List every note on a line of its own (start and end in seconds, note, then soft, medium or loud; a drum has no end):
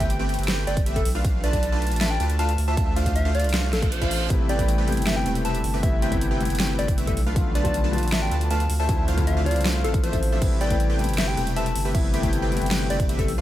0.00 0.37 G1 loud
0.00 0.17 A3 medium
0.00 0.17 C4 medium
0.00 0.17 G4 medium
0.00 0.17 B4 medium
0.00 0.17 G5 medium
0.00 0.17 G5 loud
0.00 kick medium
0.00 closed hi-hat medium
0.10 closed hi-hat medium
0.19 0.46 A3 medium
0.19 0.46 C4 medium
0.19 0.46 G4 medium
0.19 0.46 B4 medium
0.19 0.46 G5 loud
0.29 closed hi-hat soft
0.34 closed hi-hat medium
0.39 0.66 G1 loud
0.39 closed hi-hat soft
0.43 closed hi-hat medium
0.48 0.64 A3 medium
0.48 0.64 C4 medium
0.48 0.64 G4 medium
0.48 0.64 B4 medium
0.48 0.64 G5 medium
0.48 0.64 G5 loud
0.48 snare loud
0.48 closed hi-hat medium
0.67 1.04 G1 medium
0.67 0.84 A3 medium
0.67 0.84 C4 medium
0.67 0.84 G4 medium
0.67 0.84 B4 medium
0.67 0.81 D5 medium
0.67 0.84 G5 medium
0.67 closed hi-hat medium
0.77 kick loud
0.77 closed hi-hat medium
0.86 0.98 A3 loud
0.86 0.98 C4 medium
0.86 0.98 G4 medium
0.86 0.98 B4 medium
0.86 0.98 E5 loud
0.86 closed hi-hat medium
0.96 1.09 A4 loud
0.96 kick medium
0.96 closed hi-hat medium
1.05 1.93 B1 medium
1.05 open hi-hat medium
1.15 1.22 A3 medium
1.15 1.22 D4 medium
1.15 1.22 F4 medium
1.15 1.22 B4 medium
1.15 1.22 F5 medium
1.24 1.41 A3 medium
1.24 1.41 D4 medium
1.24 1.41 F4 medium
1.24 1.41 F5 medium
1.24 kick loud
1.24 closed hi-hat medium
1.44 1.70 A3 medium
1.44 1.70 D4 medium
1.44 1.70 F4 medium
1.44 1.70 B4 medium
1.44 1.82 D5 loud
1.44 1.70 A5 loud
1.44 closed hi-hat medium
1.53 kick medium
1.53 closed hi-hat medium
1.63 closed hi-hat medium
1.72 1.99 A3 medium
1.72 1.99 D4 medium
1.72 1.99 F4 medium
1.72 1.99 B4 medium
1.72 1.99 A5 loud
1.82 closed hi-hat soft
1.87 closed hi-hat medium
1.92 2.19 A1 loud
1.92 closed hi-hat soft
1.96 closed hi-hat medium
2.01 2.17 A3 medium
2.01 2.17 D4 medium
2.01 2.17 F4 medium
2.01 2.17 B4 medium
2.01 2.09 E5 medium
2.01 2.17 A5 loud
2.01 snare loud
2.01 closed hi-hat medium
2.11 2.25 G5 medium
2.20 2.57 D2 loud
2.20 2.37 A3 medium
2.20 2.37 D4 medium
2.20 2.37 F4 medium
2.20 2.37 B4 medium
2.20 2.37 A5 medium
2.20 closed hi-hat medium
2.30 closed hi-hat medium
2.39 2.51 A3 loud
2.39 2.51 D4 medium
2.39 2.51 F4 medium
2.39 2.51 B4 medium
2.39 2.51 F5 loud
2.39 2.62 A5 medium
2.39 closed hi-hat medium
2.49 closed hi-hat medium
2.58 3.46 D2 loud
2.58 open hi-hat medium
2.68 2.75 A3 medium
2.68 2.75 D4 medium
2.68 2.75 F4 medium
2.68 2.75 C5 medium
2.68 2.75 E5 medium
2.68 2.75 A5 medium
2.77 2.94 A3 medium
2.77 2.94 D4 medium
2.77 2.94 F4 medium
2.77 2.83 A5 medium
2.77 kick loud
2.77 closed hi-hat medium
2.87 2.93 A5 medium
2.96 3.23 A3 medium
2.96 3.23 D4 medium
2.96 3.23 F4 medium
2.96 3.23 C5 medium
2.96 3.23 F5 loud
2.96 closed hi-hat medium
3.06 kick medium
3.06 closed hi-hat medium
3.16 3.30 E5 medium
3.16 closed hi-hat medium
3.25 3.52 A3 medium
3.25 3.51 D4 medium
3.25 3.51 F4 medium
3.25 3.51 C5 medium
3.25 3.51 F5 loud
3.25 3.52 F5 loud
3.35 3.49 D5 loud
3.35 closed hi-hat soft
3.40 closed hi-hat medium
3.44 3.74 C2 loud
3.44 closed hi-hat medium
3.49 closed hi-hat medium
3.54 3.70 A3 medium
3.54 3.70 D4 medium
3.54 3.70 F4 medium
3.54 3.70 C5 medium
3.54 3.70 F5 loud
3.54 snare loud
3.54 closed hi-hat medium
3.54 reverse cymbal medium
3.73 4.29 A1 medium
3.73 3.79 A4 medium
3.73 snare medium
3.73 closed hi-hat medium
3.82 3.99 A3 loud
3.82 3.99 D4 medium
3.82 3.99 F4 medium
3.82 3.99 C5 medium
3.82 3.99 F5 loud
3.82 kick loud
3.82 closed hi-hat medium
3.92 4.34 C5 medium
3.92 closed hi-hat medium
4.02 4.28 A3 medium
4.02 4.28 D4 medium
4.02 4.28 F4 medium
4.02 4.28 C5 medium
4.02 4.28 F5 loud
4.02 kick medium
4.02 closed hi-hat medium
4.11 open hi-hat medium
4.29 4.99 A1 loud
4.29 4.56 C3 medium
4.29 4.56 G3 medium
4.29 4.47 A3 medium
4.29 4.57 A3 medium
4.29 4.57 B3 medium
4.29 4.47 C4 medium
4.29 4.57 E4 loud
4.29 4.47 G4 medium
4.29 4.47 B4 medium
4.29 4.47 E5 medium
4.29 kick loud
4.29 closed hi-hat medium
4.49 4.76 A3 medium
4.49 4.76 C4 medium
4.49 4.76 G4 medium
4.49 4.76 B4 medium
4.49 4.88 D5 medium
4.49 4.76 G5 loud
4.49 4.76 G5 medium
4.49 closed hi-hat medium
4.58 4.84 C3 medium
4.58 4.85 G3 medium
4.58 4.85 A3 medium
4.58 4.86 B3 medium
4.58 4.86 E4 loud
4.58 kick medium
4.58 closed hi-hat medium
4.68 closed hi-hat medium
4.78 5.04 A3 medium
4.78 5.04 C4 medium
4.78 5.04 G4 medium
4.78 5.04 B4 medium
4.78 5.04 G5 loud
4.85 5.80 C3 loud
4.85 5.80 G3 medium
4.85 5.81 A3 medium
4.85 5.81 B3 medium
4.85 closed hi-hat soft
4.89 5.82 E4 loud
4.89 closed hi-hat medium
4.97 5.25 G1 loud
4.97 closed hi-hat medium
5.02 closed hi-hat medium
5.06 5.23 A3 medium
5.06 5.23 C4 medium
5.06 5.23 G4 medium
5.06 5.23 B4 medium
5.06 5.14 E5 medium
5.06 5.23 G5 medium
5.06 snare loud
5.06 closed hi-hat medium
5.16 5.30 G5 medium
5.26 5.63 E1 loud
5.26 5.43 A3 medium
5.26 5.43 C4 medium
5.26 5.43 G4 medium
5.26 5.43 B4 medium
5.26 5.43 G5 medium
5.26 closed hi-hat medium
5.35 closed hi-hat medium
5.45 5.57 A3 medium
5.45 5.57 C4 medium
5.45 5.57 G4 medium
5.45 5.57 B4 medium
5.45 5.56 E5 loud
5.45 5.57 E5 loud
5.45 5.74 A5 medium
5.45 closed hi-hat medium
5.55 closed hi-hat medium
5.64 6.49 G1 loud
5.64 open hi-hat loud
5.74 5.81 A3 medium
5.74 5.81 C4 medium
5.74 5.81 G4 medium
5.74 5.81 B4 medium
5.74 5.81 E5 medium
5.82 6.09 C3 medium
5.82 6.09 G3 medium
5.82 6.09 A3 medium
5.82 6.00 A3 medium
5.82 6.10 B3 medium
5.82 6.00 C4 medium
5.82 6.10 E4 loud
5.82 6.00 E5 medium
5.82 5.89 E5 loud
5.82 kick loud
5.82 closed hi-hat medium
5.93 5.99 E5 medium
6.02 6.29 A3 medium
6.02 6.29 C4 medium
6.02 6.29 G4 medium
6.02 6.29 B4 medium
6.02 6.16 E5 loud
6.02 6.29 G5 loud
6.02 closed hi-hat medium
6.11 6.37 C3 loud
6.11 6.38 G3 medium
6.11 6.38 A3 medium
6.11 6.38 B3 medium
6.11 6.39 E4 loud
6.11 kick medium
6.11 closed hi-hat medium
6.21 closed hi-hat medium
6.31 6.57 A3 medium
6.31 6.57 C4 medium
6.31 6.57 G4 medium
6.31 6.57 B4 medium
6.31 6.57 G5 loud
6.38 7.15 C3 loud
6.38 7.15 G3 medium
6.38 7.16 A3 medium
6.38 7.16 B3 loud
6.38 7.17 E4 loud
6.38 closed hi-hat medium
6.45 closed hi-hat medium
6.50 6.78 G1 loud
6.50 closed hi-hat medium
6.55 closed hi-hat medium
6.59 6.76 A3 medium
6.59 6.76 C4 medium
6.59 6.76 G4 medium
6.59 6.76 B4 medium
6.59 6.76 G5 medium
6.59 6.76 G5 loud
6.59 snare loud
6.59 closed hi-hat medium
6.79 7.16 G1 medium
6.79 6.96 A3 medium
6.79 6.96 C4 medium
6.79 6.96 G4 medium
6.79 6.96 B4 medium
6.79 6.93 D5 loud
6.79 6.96 G5 medium
6.79 closed hi-hat medium
6.88 kick loud
6.88 closed hi-hat medium
6.98 7.09 A3 loud
6.98 7.09 C4 medium
6.98 7.09 G4 medium
6.98 7.09 B4 medium
6.98 7.09 E5 loud
6.98 closed hi-hat medium
7.07 7.21 A4 loud
7.07 kick medium
7.07 closed hi-hat medium
7.17 8.04 B1 medium
7.17 open hi-hat medium
7.26 7.34 A3 medium
7.26 7.34 D4 medium
7.26 7.34 F4 medium
7.26 7.34 B4 medium
7.26 7.34 F5 medium
7.35 7.62 D3 medium
7.35 7.62 F3 medium
7.35 7.62 A3 medium
7.35 7.53 A3 medium
7.35 7.63 B3 medium
7.35 7.53 D4 medium
7.35 7.53 F4 medium
7.35 7.63 F4 loud
7.35 7.53 B4 medium
7.35 7.53 F5 medium
7.35 kick loud
7.35 closed hi-hat medium
7.55 7.82 A3 medium
7.55 7.82 D4 medium
7.55 7.82 F4 medium
7.55 7.82 B4 medium
7.55 7.93 D5 loud
7.55 7.81 A5 loud
7.55 7.82 A5 loud
7.55 closed hi-hat medium
7.64 7.90 D3 medium
7.64 7.91 F3 medium
7.64 7.91 A3 medium
7.64 7.91 B3 medium
7.64 7.92 F4 loud
7.64 kick medium
7.64 closed hi-hat medium
7.74 closed hi-hat medium
7.84 8.10 A3 medium
7.84 8.10 D4 medium
7.84 8.10 F4 medium
7.84 8.10 B4 medium
7.84 8.10 A5 loud
7.91 8.68 D3 loud
7.91 8.68 F3 medium
7.91 8.69 A3 medium
7.91 8.69 B3 medium
7.91 closed hi-hat soft
7.95 8.70 F4 loud
7.95 closed hi-hat medium
8.03 8.30 A1 loud
8.03 closed hi-hat soft
8.08 closed hi-hat medium
8.12 8.29 A3 medium
8.12 8.29 D4 medium
8.12 8.29 F4 medium
8.12 8.29 B4 medium
8.12 8.20 E5 medium
8.12 8.29 A5 medium
8.12 8.29 A5 loud
8.12 snare loud
8.12 closed hi-hat medium
8.22 8.36 G5 loud
8.31 8.68 D2 loud
8.31 8.48 A3 medium
8.31 8.48 D4 medium
8.31 8.48 F4 medium
8.31 8.48 B4 medium
8.31 8.48 A5 medium
8.31 closed hi-hat medium
8.41 closed hi-hat medium
8.51 8.62 A3 loud
8.51 8.62 D4 medium
8.51 8.62 F4 medium
8.51 8.62 B4 medium
8.51 8.62 F5 loud
8.51 8.74 A5 medium
8.51 closed hi-hat medium
8.60 closed hi-hat medium
8.70 9.57 D2 medium
8.70 open hi-hat medium
8.79 8.87 A3 medium
8.79 8.87 D4 medium
8.79 8.87 F4 medium
8.79 8.87 C5 medium
8.79 8.87 E5 medium
8.79 8.87 A5 medium
8.88 9.15 D3 medium
8.88 9.15 F3 medium
8.88 9.15 A3 medium
8.88 9.06 A3 medium
8.88 9.16 C4 medium
8.88 9.06 D4 medium
8.88 9.16 E4 loud
8.88 9.06 F4 medium
8.88 9.06 C5 medium
8.88 9.06 E5 medium
8.88 kick loud
8.88 closed hi-hat medium
8.99 9.05 A5 medium
9.08 9.34 A3 medium
9.08 9.35 D4 medium
9.08 9.34 F4 medium
9.08 9.35 C5 medium
9.08 9.35 F5 loud
9.08 closed hi-hat medium
9.17 9.43 D3 loud
9.17 9.44 F3 medium
9.17 9.44 A3 medium
9.17 9.44 C4 medium
9.17 9.44 E4 loud
9.17 kick medium
9.17 closed hi-hat medium
9.27 9.41 E5 medium
9.27 closed hi-hat medium
9.37 9.63 A3 medium
9.37 9.63 D4 medium
9.37 9.63 F4 medium
9.37 9.63 C5 medium
9.37 9.63 F5 loud
9.44 10.38 D3 loud
9.44 10.39 F3 medium
9.44 10.39 A3 medium
9.44 10.40 C4 medium
9.44 9.60 D5 medium
9.44 closed hi-hat soft
9.48 10.40 E4 loud
9.48 closed hi-hat medium
9.56 9.86 C2 loud
9.56 closed hi-hat soft
9.61 closed hi-hat medium
9.65 9.82 A3 medium
9.65 9.82 D4 medium
9.65 9.82 F4 medium
9.65 9.82 C5 medium
9.65 9.82 F5 medium
9.65 snare loud
9.65 closed hi-hat medium
9.84 10.41 A1 medium
9.84 10.01 A3 medium
9.84 10.01 D4 medium
9.84 10.01 F4 medium
9.84 9.90 A4 medium
9.84 10.01 C5 medium
9.84 10.01 F5 medium
9.84 closed hi-hat medium
9.94 kick loud
9.94 closed hi-hat medium
10.03 10.15 A3 medium
10.03 10.15 D4 medium
10.03 10.15 F4 medium
10.03 10.46 C5 medium
10.03 10.15 C5 medium
10.03 10.15 E5 loud
10.03 closed hi-hat medium
10.13 kick medium
10.13 closed hi-hat medium
10.23 open hi-hat medium
10.32 10.40 A3 medium
10.32 10.40 D4 medium
10.32 10.40 F4 medium
10.32 10.40 C5 medium
10.32 10.39 E5 medium
10.32 10.40 E5 medium
10.41 11.10 A1 loud
10.41 10.68 C3 medium
10.41 10.68 G3 medium
10.41 10.68 A3 medium
10.41 10.68 B3 medium
10.41 10.69 E4 medium
10.41 10.59 G4 medium
10.41 10.59 E5 medium
10.41 kick loud
10.41 closed hi-hat medium
10.41 crash soft
10.61 10.87 A3 medium
10.61 10.87 C4 medium
10.61 10.87 G4 medium
10.61 10.87 B4 medium
10.61 10.99 D5 medium
10.61 10.87 G5 loud
10.61 closed hi-hat medium
10.70 10.96 C3 medium
10.70 10.97 G3 medium
10.70 10.97 A3 medium
10.70 10.97 B3 medium
10.70 10.97 E4 medium
10.70 kick medium
10.70 closed hi-hat medium
10.80 closed hi-hat medium
10.89 11.16 A3 medium
10.89 11.16 C4 medium
10.89 11.16 G4 medium
10.89 11.16 B4 medium
10.89 11.16 G5 loud
10.97 11.91 C3 loud
10.97 11.92 G3 medium
10.97 11.92 A3 medium
10.97 11.93 B3 medium
10.97 closed hi-hat soft
11.01 11.93 E4 loud
11.01 closed hi-hat medium
11.09 11.36 G1 loud
11.09 closed hi-hat soft
11.14 closed hi-hat medium
11.18 11.34 A3 medium
11.18 11.34 C4 medium
11.18 11.34 G4 medium
11.18 11.34 B4 medium
11.18 11.26 E5 medium
11.18 11.34 G5 loud
11.18 snare loud
11.18 closed hi-hat medium
11.18 crash soft
11.28 11.42 G5 medium
11.37 11.74 E1 loud
11.37 11.54 A3 medium
11.37 11.54 C4 medium
11.37 11.54 G4 medium
11.37 11.54 B4 medium
11.37 11.54 G5 medium
11.37 closed hi-hat medium
11.47 closed hi-hat medium
11.56 11.68 A3 loud
11.56 11.68 C4 medium
11.56 11.68 G4 medium
11.56 11.68 B4 medium
11.56 11.68 E5 loud
11.56 11.85 A5 medium
11.56 closed hi-hat medium
11.66 closed hi-hat medium
11.76 12.60 G1 medium
11.76 open hi-hat medium
11.85 11.92 A3 medium
11.85 11.92 C4 medium
11.85 11.92 G4 medium
11.85 11.92 B4 medium
11.85 11.92 E5 medium
11.94 12.20 C3 medium
11.94 12.21 G3 medium
11.94 12.21 A3 medium
11.94 12.11 A3 medium
11.94 12.21 B3 medium
11.94 12.21 E4 loud
11.94 12.11 E5 medium
11.94 12.01 E5 medium
11.94 kick loud
11.94 closed hi-hat medium
11.94 crash soft
12.04 12.10 E5 medium
12.14 12.40 A3 medium
12.14 12.40 C4 medium
12.14 12.40 G4 medium
12.14 12.40 B4 medium
12.14 12.28 E5 medium
12.14 12.40 G5 loud
12.14 closed hi-hat medium
12.22 12.48 C3 medium
12.22 12.49 G3 medium
12.22 12.50 A3 medium
12.22 12.50 B3 medium
12.22 12.50 E4 loud
12.22 kick medium
12.22 closed hi-hat medium
12.33 closed hi-hat medium
12.42 12.69 A3 medium
12.42 12.69 C4 medium
12.42 12.69 G4 medium
12.42 12.69 B4 medium
12.42 12.69 G5 loud
12.42 12.69 G5 medium
12.50 13.26 C3 loud
12.50 13.27 G3 medium
12.50 13.27 A3 medium
12.50 13.28 B3 medium
12.50 closed hi-hat soft
12.54 13.28 E4 loud
12.54 closed hi-hat medium
12.62 12.89 G1 loud
12.62 closed hi-hat soft
12.66 closed hi-hat medium
12.71 12.87 A3 medium
12.71 12.87 C4 medium
12.71 12.87 G4 medium
12.71 12.87 B4 medium
12.71 12.87 G5 loud
12.71 snare loud
12.71 closed hi-hat medium
12.71 crash soft
12.90 13.30 G1 medium
12.90 13.07 A3 medium
12.90 13.07 C4 medium
12.90 13.07 G4 medium
12.90 13.07 B4 medium
12.90 13.04 D5 loud
12.90 13.07 G5 medium
12.90 closed hi-hat medium
13.00 kick loud
13.00 closed hi-hat medium
13.09 13.21 A3 loud
13.09 13.21 C4 medium
13.09 13.21 G4 medium
13.09 13.21 B4 medium
13.09 13.21 E5 loud
13.09 closed hi-hat medium
13.19 13.32 A4 loud
13.19 kick medium
13.19 closed hi-hat medium
13.28 13.41 B1 medium
13.28 open hi-hat medium
13.38 13.41 A3 medium
13.38 13.41 D4 medium
13.38 13.41 F4 medium
13.38 13.41 B4 medium
13.38 13.41 F5 medium